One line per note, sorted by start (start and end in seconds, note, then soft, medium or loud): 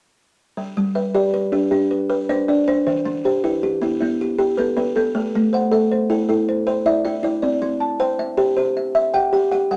0.57 0.96 G3 medium
0.77 1.15 G3 medium
0.95 1.53 B4 medium
0.95 1.53 E5 medium
1.15 1.53 G4 medium
1.15 1.72 D5 medium
1.34 1.72 B4 medium
1.52 1.91 D4 medium
1.52 2.10 G4 medium
1.71 2.10 D4 medium
1.71 2.29 G4 medium
1.91 2.48 B4 medium
2.10 2.48 B4 medium
2.29 2.66 D4 medium
2.29 2.85 C5 medium
2.29 2.87 D5 medium
2.48 2.87 D4 medium
2.48 3.06 D5 medium
2.68 3.06 D4 medium
2.68 3.06 C5 medium
2.87 3.25 E3 medium
2.87 3.24 C5 medium
3.05 3.44 E3 medium
3.25 3.82 G4 medium
3.25 3.82 C5 medium
3.44 3.82 E4 medium
3.44 4.01 B4 medium
3.63 4.01 G4 medium
3.82 4.20 B3 medium
3.82 4.39 E4 medium
4.01 4.39 B3 medium
4.01 4.58 E4 medium
4.21 4.78 G4 medium
4.39 4.77 G4 medium
4.57 4.95 B3 medium
4.57 5.15 A4 medium
4.57 5.15 B4 medium
4.77 5.15 B3 medium
4.77 5.34 B4 medium
4.96 5.34 B3 medium
4.96 5.34 A4 medium
5.15 5.53 A3 medium
5.15 5.54 A4 medium
5.35 5.73 A3 medium
5.53 6.10 C5 medium
5.53 6.11 F#5 medium
5.72 6.27 A4 medium
5.72 6.29 E5 medium
5.92 6.29 C5 medium
6.10 6.48 E4 medium
6.10 6.67 A4 medium
6.29 6.67 E4 medium
6.29 6.86 A4 medium
6.49 7.05 C5 medium
6.67 7.05 C5 medium
6.86 7.22 E4 medium
6.86 7.41 D5 medium
6.86 7.43 E5 medium
7.05 7.43 E4 medium
7.05 7.62 E5 medium
7.23 7.62 E4 medium
7.23 7.62 D5 medium
7.42 7.81 C4 medium
7.42 7.81 D5 medium
7.62 8.00 C4 medium
7.80 8.38 A5 medium
8.00 8.55 C5 medium
8.00 8.57 G5 medium
8.19 8.57 E5 medium
8.37 8.76 G4 medium
8.37 8.95 C5 medium
8.57 8.95 G4 medium
8.57 9.14 C5 medium
8.77 9.33 E5 medium
8.95 9.33 E5 medium
9.14 9.51 G4 medium
9.14 9.70 F#5 medium
9.14 9.71 G5 medium
9.33 9.71 G4 medium
9.33 9.77 G5 medium
9.52 9.77 G4 medium
9.52 9.77 F#5 medium
9.71 9.77 G3 medium
9.71 9.77 F#5 medium